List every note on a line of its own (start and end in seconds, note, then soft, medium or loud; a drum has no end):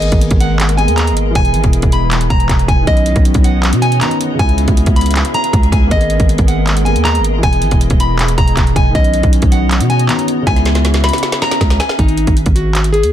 0.00 0.11 G#1 loud
0.00 1.34 G#3 medium
0.00 0.74 A#3 medium
0.00 0.77 B3 medium
0.00 0.79 G#4 medium
0.00 2.84 G#4 medium
0.00 1.34 A#4 medium
0.00 0.19 D#5 loud
0.00 1.34 D#5 medium
0.00 closed hi-hat medium
0.12 0.30 G#1 loud
0.12 kick loud
0.12 closed hi-hat medium
0.21 closed hi-hat medium
0.31 0.89 G#1 loud
0.31 kick medium
0.31 closed hi-hat medium
0.40 0.76 F#5 medium
0.40 closed hi-hat medium
0.60 clap loud
0.60 closed hi-hat medium
0.69 closed hi-hat medium
0.76 1.34 A#3 medium
0.76 1.33 B3 soft
0.76 0.95 G#5 medium
0.76 closed hi-hat medium
0.80 1.36 G#4 medium
0.88 1.13 D#2 loud
0.88 closed hi-hat medium
0.97 1.14 A#5 medium
0.97 clap loud
0.97 closed hi-hat medium
1.07 closed hi-hat medium
1.12 1.34 G#1 medium
1.17 closed hi-hat medium
1.31 2.82 E3 medium
1.35 1.56 E1 loud
1.35 2.86 E3 medium
1.35 2.84 B3 medium
1.35 2.86 E4 medium
1.35 2.86 B4 medium
1.35 1.71 G#5 loud
1.35 kick loud
1.35 closed hi-hat medium
1.39 2.86 G#4 medium
1.45 closed hi-hat medium
1.54 1.63 G#1 loud
1.54 closed hi-hat medium
1.64 1.82 E1 loud
1.64 kick medium
1.64 closed hi-hat medium
1.73 closed hi-hat medium
1.82 2.28 E1 loud
1.82 kick loud
1.82 closed hi-hat medium
1.92 2.28 B5 medium
1.92 closed hi-hat medium
2.11 clap loud
2.11 closed hi-hat medium
2.21 closed hi-hat medium
2.30 2.49 E1 loud
2.30 2.66 A#5 medium
2.30 kick loud
2.30 closed hi-hat medium
2.40 closed hi-hat medium
2.49 2.68 E1 loud
2.49 kick medium
2.49 clap loud
2.49 closed hi-hat medium
2.59 closed hi-hat medium
2.68 2.87 E1 loud
2.68 2.85 G#5 medium
2.68 kick loud
2.68 closed hi-hat medium
2.83 3.97 D#3 medium
2.87 3.15 B1 loud
2.87 3.99 B3 medium
2.87 4.38 B3 medium
2.87 4.38 F#4 medium
2.87 4.38 C#5 medium
2.87 4.38 D#5 medium
2.87 3.23 D#5 loud
2.87 kick loud
2.87 closed hi-hat medium
2.91 4.01 C#4 medium
2.97 closed hi-hat medium
3.06 closed hi-hat medium
3.16 3.34 B1 loud
3.16 kick medium
3.16 closed hi-hat medium
3.25 closed hi-hat medium
3.34 3.74 B1 loud
3.34 kick medium
3.34 closed hi-hat medium
3.44 3.80 F#5 medium
3.44 closed hi-hat medium
3.63 clap loud
3.63 closed hi-hat medium
3.73 4.00 B2 loud
3.73 closed hi-hat medium
3.82 3.99 G#5 medium
3.82 closed hi-hat medium
3.92 closed hi-hat medium
4.00 4.39 D#3 medium
4.00 4.37 B3 medium
4.00 4.18 A#5 medium
4.00 clap loud
4.00 closed hi-hat medium
4.04 4.41 C#4 medium
4.11 closed hi-hat medium
4.21 closed hi-hat medium
4.34 5.86 C#3 medium
4.39 4.67 C#2 loud
4.39 5.88 B3 medium
4.39 5.90 C#4 medium
4.39 8.91 G#4 medium
4.39 5.90 B4 medium
4.39 5.90 E5 medium
4.39 4.75 G#5 medium
4.39 kick loud
4.39 closed hi-hat medium
4.43 5.90 E4 medium
4.49 closed hi-hat medium
4.58 closed hi-hat medium
4.68 4.86 C#2 loud
4.68 kick loud
4.68 closed hi-hat medium
4.77 closed hi-hat medium
4.86 5.23 C#2 loud
4.86 kick medium
4.86 closed hi-hat medium
4.96 5.32 B5 medium
4.96 closed hi-hat soft
4.96 open hi-hat medium
5.01 closed hi-hat medium
5.06 closed hi-hat medium
5.11 closed hi-hat medium
5.15 clap loud
5.15 closed hi-hat medium
5.25 closed hi-hat medium
5.34 5.70 A#5 medium
5.34 closed hi-hat medium
5.44 closed hi-hat medium
5.53 5.71 C#2 loud
5.53 kick loud
5.53 closed hi-hat medium
5.63 closed hi-hat medium
5.72 5.90 C#2 loud
5.72 5.89 G#5 medium
5.72 kick loud
5.72 closed hi-hat medium
5.87 7.42 G#3 medium
5.87 6.82 A#3 medium
5.87 7.41 A#4 medium
5.87 8.92 D#5 medium
5.91 6.19 G#1 loud
5.91 6.84 B3 medium
5.91 6.27 D#5 loud
5.91 kick loud
5.91 closed hi-hat medium
5.96 6.86 G#4 medium
6.01 closed hi-hat medium
6.10 closed hi-hat medium
6.20 6.38 G#1 loud
6.20 kick loud
6.20 closed hi-hat medium
6.29 closed hi-hat medium
6.38 6.97 G#1 loud
6.38 kick medium
6.38 closed hi-hat medium
6.48 6.84 F#5 medium
6.48 closed hi-hat medium
6.67 clap loud
6.67 closed hi-hat medium
6.77 closed hi-hat medium
6.84 7.42 A#3 medium
6.84 7.41 B3 soft
6.84 7.02 G#5 medium
6.84 closed hi-hat medium
6.88 7.44 G#4 medium
6.96 7.21 D#2 loud
6.96 closed hi-hat medium
7.05 7.22 A#5 medium
7.05 clap loud
7.05 closed hi-hat medium
7.15 closed hi-hat medium
7.19 7.42 G#1 loud
7.24 closed hi-hat medium
7.38 8.90 E3 medium
7.43 7.64 E1 loud
7.43 8.94 E3 medium
7.43 8.92 B3 medium
7.43 8.94 E4 medium
7.43 7.79 G#5 loud
7.43 kick loud
7.43 closed hi-hat medium
7.47 8.94 G#4 medium
7.53 closed hi-hat medium
7.62 7.71 G#1 loud
7.62 closed hi-hat medium
7.71 7.90 E1 loud
7.71 kick loud
7.71 closed hi-hat medium
7.81 closed hi-hat medium
7.90 8.36 E1 loud
7.90 kick medium
7.90 closed hi-hat medium
8.00 8.36 B5 medium
8.00 closed hi-hat medium
8.19 clap loud
8.19 closed hi-hat medium
8.28 closed hi-hat medium
8.38 8.56 E1 loud
8.38 8.74 A#5 medium
8.38 kick medium
8.38 closed hi-hat medium
8.48 closed hi-hat medium
8.57 8.75 E1 loud
8.57 kick medium
8.57 clap loud
8.57 closed hi-hat medium
8.67 closed hi-hat medium
8.76 8.94 E1 loud
8.76 8.93 G#5 medium
8.76 kick medium
8.76 closed hi-hat medium
8.90 10.04 D#3 medium
8.95 9.22 B1 loud
8.95 10.07 B3 medium
8.95 10.45 B3 medium
8.95 10.45 F#4 medium
8.95 10.45 C#5 medium
8.95 9.31 D#5 loud
8.95 10.45 D#5 medium
8.95 kick loud
8.95 closed hi-hat medium
8.99 10.09 C#4 medium
9.04 closed hi-hat medium
9.14 closed hi-hat medium
9.23 9.42 B1 loud
9.23 kick loud
9.23 closed hi-hat medium
9.33 closed hi-hat medium
9.42 9.82 B1 loud
9.42 kick medium
9.42 closed hi-hat medium
9.52 9.88 F#5 medium
9.52 closed hi-hat medium
9.71 clap loud
9.71 closed hi-hat medium
9.80 10.07 B2 loud
9.80 closed hi-hat medium
9.90 10.06 G#5 medium
9.90 closed hi-hat medium
9.99 closed hi-hat medium
10.07 10.46 D#3 soft
10.07 10.45 B3 medium
10.07 10.26 A#5 medium
10.07 clap loud
10.07 closed hi-hat medium
10.12 10.48 C#4 medium
10.19 closed hi-hat medium
10.28 closed hi-hat medium
10.42 11.93 C#3 medium
10.46 11.11 C#2 loud
10.46 11.95 B3 medium
10.46 11.97 C#4 medium
10.46 11.97 G#4 medium
10.46 11.97 B4 medium
10.46 11.97 E5 medium
10.46 10.83 G#5 medium
10.46 kick loud
10.46 snare medium
10.46 closed hi-hat medium
10.50 11.98 E4 medium
10.56 snare medium
10.56 closed hi-hat medium
10.65 snare medium
10.65 closed hi-hat medium
10.75 snare medium
10.75 closed hi-hat medium
10.85 snare medium
10.85 closed hi-hat medium
10.94 snare medium
10.94 closed hi-hat medium
11.04 11.40 B5 medium
11.04 snare medium
11.04 closed hi-hat soft
11.04 open hi-hat medium
11.09 closed hi-hat medium
11.13 snare medium
11.13 closed hi-hat medium
11.18 closed hi-hat medium
11.23 snare medium
11.23 closed hi-hat medium
11.32 snare medium
11.32 closed hi-hat medium
11.42 11.78 A#5 medium
11.42 snare medium
11.42 closed hi-hat medium
11.51 snare medium
11.51 closed hi-hat medium
11.61 11.79 C#2 loud
11.61 kick loud
11.61 snare loud
11.61 closed hi-hat medium
11.70 snare medium
11.70 closed hi-hat medium
11.80 11.96 G#5 medium
11.80 snare loud
11.80 closed hi-hat medium
11.89 snare loud
11.99 12.26 G#1 loud
11.99 12.35 D#4 loud
11.99 kick loud
11.99 closed hi-hat medium
12.08 closed hi-hat medium
12.17 closed hi-hat medium
12.27 12.46 G#1 loud
12.27 kick medium
12.27 closed hi-hat medium
12.37 closed hi-hat medium
12.46 13.05 G#1 loud
12.46 kick medium
12.46 closed hi-hat medium
12.56 12.91 F#4 medium
12.56 closed hi-hat medium
12.75 clap loud
12.75 closed hi-hat medium
12.84 closed hi-hat medium
12.93 13.10 G#4 medium
12.93 closed hi-hat medium
13.03 13.13 D#2 loud
13.03 closed hi-hat medium